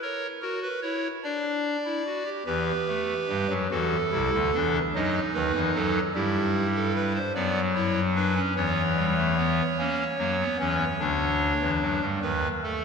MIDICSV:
0, 0, Header, 1, 2, 480
1, 0, Start_track
1, 0, Key_signature, 1, "minor"
1, 0, Tempo, 819672
1, 10, Time_signature, 6, 3, 24, 8
1, 2890, Tempo, 810811
1, 7573, End_track
2, 0, Start_track
2, 0, Title_t, "Pipe organ"
2, 0, Program_c, 0, 19
2, 13, Note_on_c, 0, 73, 73
2, 14, Note_on_c, 0, 70, 64
2, 159, Note_off_c, 0, 73, 0
2, 160, Note_off_c, 0, 70, 0
2, 246, Note_on_c, 0, 70, 63
2, 247, Note_on_c, 0, 66, 55
2, 349, Note_off_c, 0, 70, 0
2, 365, Note_on_c, 0, 71, 67
2, 394, Note_off_c, 0, 66, 0
2, 468, Note_off_c, 0, 71, 0
2, 482, Note_on_c, 0, 64, 62
2, 482, Note_on_c, 0, 73, 75
2, 631, Note_off_c, 0, 73, 0
2, 632, Note_off_c, 0, 64, 0
2, 724, Note_on_c, 0, 62, 58
2, 725, Note_on_c, 0, 74, 68
2, 1034, Note_off_c, 0, 62, 0
2, 1083, Note_on_c, 0, 64, 55
2, 1187, Note_off_c, 0, 64, 0
2, 1205, Note_on_c, 0, 66, 57
2, 1308, Note_off_c, 0, 66, 0
2, 1320, Note_on_c, 0, 67, 52
2, 1344, Note_off_c, 0, 74, 0
2, 1425, Note_off_c, 0, 67, 0
2, 1439, Note_on_c, 0, 40, 67
2, 1440, Note_on_c, 0, 67, 59
2, 1441, Note_on_c, 0, 52, 66
2, 1441, Note_on_c, 0, 71, 55
2, 1591, Note_off_c, 0, 40, 0
2, 1592, Note_off_c, 0, 52, 0
2, 1685, Note_on_c, 0, 57, 65
2, 1836, Note_off_c, 0, 57, 0
2, 1926, Note_on_c, 0, 43, 72
2, 1926, Note_on_c, 0, 55, 69
2, 2032, Note_off_c, 0, 43, 0
2, 2032, Note_off_c, 0, 55, 0
2, 2046, Note_on_c, 0, 42, 67
2, 2046, Note_on_c, 0, 54, 66
2, 2068, Note_off_c, 0, 67, 0
2, 2068, Note_off_c, 0, 71, 0
2, 2152, Note_off_c, 0, 42, 0
2, 2152, Note_off_c, 0, 54, 0
2, 2170, Note_on_c, 0, 66, 58
2, 2171, Note_on_c, 0, 40, 64
2, 2171, Note_on_c, 0, 69, 55
2, 2172, Note_on_c, 0, 52, 66
2, 2320, Note_off_c, 0, 66, 0
2, 2321, Note_off_c, 0, 40, 0
2, 2322, Note_off_c, 0, 52, 0
2, 2412, Note_on_c, 0, 48, 71
2, 2414, Note_on_c, 0, 36, 66
2, 2414, Note_on_c, 0, 64, 58
2, 2517, Note_off_c, 0, 48, 0
2, 2518, Note_off_c, 0, 36, 0
2, 2539, Note_on_c, 0, 38, 72
2, 2539, Note_on_c, 0, 50, 71
2, 2563, Note_off_c, 0, 64, 0
2, 2640, Note_off_c, 0, 38, 0
2, 2640, Note_off_c, 0, 50, 0
2, 2658, Note_on_c, 0, 52, 69
2, 2659, Note_on_c, 0, 40, 72
2, 2659, Note_on_c, 0, 62, 59
2, 2790, Note_off_c, 0, 69, 0
2, 2804, Note_off_c, 0, 52, 0
2, 2804, Note_off_c, 0, 62, 0
2, 2805, Note_off_c, 0, 40, 0
2, 2897, Note_on_c, 0, 42, 74
2, 2897, Note_on_c, 0, 63, 59
2, 2898, Note_on_c, 0, 54, 74
2, 2898, Note_on_c, 0, 75, 60
2, 3043, Note_off_c, 0, 42, 0
2, 3044, Note_off_c, 0, 54, 0
2, 3044, Note_off_c, 0, 75, 0
2, 3131, Note_on_c, 0, 71, 52
2, 3132, Note_on_c, 0, 51, 64
2, 3133, Note_on_c, 0, 39, 66
2, 3234, Note_off_c, 0, 51, 0
2, 3235, Note_off_c, 0, 39, 0
2, 3250, Note_on_c, 0, 52, 66
2, 3252, Note_on_c, 0, 40, 72
2, 3280, Note_off_c, 0, 71, 0
2, 3353, Note_off_c, 0, 52, 0
2, 3355, Note_off_c, 0, 40, 0
2, 3370, Note_on_c, 0, 54, 75
2, 3370, Note_on_c, 0, 69, 59
2, 3372, Note_on_c, 0, 42, 71
2, 3513, Note_off_c, 0, 63, 0
2, 3519, Note_off_c, 0, 54, 0
2, 3519, Note_off_c, 0, 69, 0
2, 3521, Note_off_c, 0, 42, 0
2, 3606, Note_on_c, 0, 67, 57
2, 3607, Note_on_c, 0, 64, 61
2, 3608, Note_on_c, 0, 43, 72
2, 3608, Note_on_c, 0, 55, 71
2, 3916, Note_off_c, 0, 67, 0
2, 3965, Note_on_c, 0, 69, 62
2, 4069, Note_off_c, 0, 69, 0
2, 4084, Note_on_c, 0, 71, 58
2, 4187, Note_off_c, 0, 71, 0
2, 4202, Note_on_c, 0, 72, 57
2, 4222, Note_off_c, 0, 64, 0
2, 4223, Note_off_c, 0, 43, 0
2, 4223, Note_off_c, 0, 55, 0
2, 4306, Note_off_c, 0, 72, 0
2, 4317, Note_on_c, 0, 54, 63
2, 4319, Note_on_c, 0, 42, 66
2, 4319, Note_on_c, 0, 74, 61
2, 4320, Note_on_c, 0, 59, 77
2, 4468, Note_off_c, 0, 59, 0
2, 4468, Note_off_c, 0, 74, 0
2, 4556, Note_on_c, 0, 73, 60
2, 4557, Note_on_c, 0, 64, 70
2, 4706, Note_off_c, 0, 64, 0
2, 4706, Note_off_c, 0, 73, 0
2, 4796, Note_on_c, 0, 71, 67
2, 4797, Note_on_c, 0, 62, 75
2, 4901, Note_off_c, 0, 62, 0
2, 4915, Note_on_c, 0, 61, 69
2, 4936, Note_off_c, 0, 42, 0
2, 4936, Note_off_c, 0, 54, 0
2, 4946, Note_off_c, 0, 71, 0
2, 5020, Note_off_c, 0, 61, 0
2, 5035, Note_on_c, 0, 52, 66
2, 5036, Note_on_c, 0, 40, 67
2, 5036, Note_on_c, 0, 59, 76
2, 5037, Note_on_c, 0, 73, 64
2, 5186, Note_off_c, 0, 59, 0
2, 5275, Note_on_c, 0, 55, 75
2, 5380, Note_off_c, 0, 55, 0
2, 5397, Note_on_c, 0, 57, 71
2, 5502, Note_off_c, 0, 57, 0
2, 5517, Note_on_c, 0, 59, 76
2, 5657, Note_off_c, 0, 40, 0
2, 5657, Note_off_c, 0, 52, 0
2, 5667, Note_off_c, 0, 59, 0
2, 5760, Note_on_c, 0, 58, 63
2, 5761, Note_on_c, 0, 61, 77
2, 5909, Note_off_c, 0, 58, 0
2, 5910, Note_off_c, 0, 61, 0
2, 5998, Note_on_c, 0, 42, 65
2, 5998, Note_on_c, 0, 54, 61
2, 5998, Note_on_c, 0, 58, 66
2, 6103, Note_off_c, 0, 58, 0
2, 6122, Note_on_c, 0, 59, 69
2, 6148, Note_off_c, 0, 42, 0
2, 6148, Note_off_c, 0, 54, 0
2, 6225, Note_off_c, 0, 59, 0
2, 6238, Note_on_c, 0, 40, 65
2, 6238, Note_on_c, 0, 52, 67
2, 6240, Note_on_c, 0, 61, 76
2, 6388, Note_off_c, 0, 40, 0
2, 6388, Note_off_c, 0, 52, 0
2, 6390, Note_off_c, 0, 61, 0
2, 6479, Note_on_c, 0, 50, 64
2, 6479, Note_on_c, 0, 62, 68
2, 6482, Note_on_c, 0, 38, 62
2, 6792, Note_off_c, 0, 50, 0
2, 6794, Note_off_c, 0, 38, 0
2, 6841, Note_on_c, 0, 40, 58
2, 6842, Note_on_c, 0, 52, 59
2, 6902, Note_off_c, 0, 73, 0
2, 6946, Note_off_c, 0, 40, 0
2, 6947, Note_off_c, 0, 52, 0
2, 6962, Note_on_c, 0, 54, 59
2, 6964, Note_on_c, 0, 42, 60
2, 7067, Note_off_c, 0, 54, 0
2, 7068, Note_off_c, 0, 42, 0
2, 7084, Note_on_c, 0, 55, 58
2, 7087, Note_on_c, 0, 43, 59
2, 7103, Note_off_c, 0, 62, 0
2, 7189, Note_off_c, 0, 55, 0
2, 7190, Note_off_c, 0, 43, 0
2, 7202, Note_on_c, 0, 71, 51
2, 7204, Note_on_c, 0, 39, 64
2, 7204, Note_on_c, 0, 51, 60
2, 7354, Note_off_c, 0, 39, 0
2, 7354, Note_off_c, 0, 71, 0
2, 7355, Note_off_c, 0, 51, 0
2, 7446, Note_on_c, 0, 57, 57
2, 7446, Note_on_c, 0, 69, 49
2, 7573, Note_off_c, 0, 57, 0
2, 7573, Note_off_c, 0, 69, 0
2, 7573, End_track
0, 0, End_of_file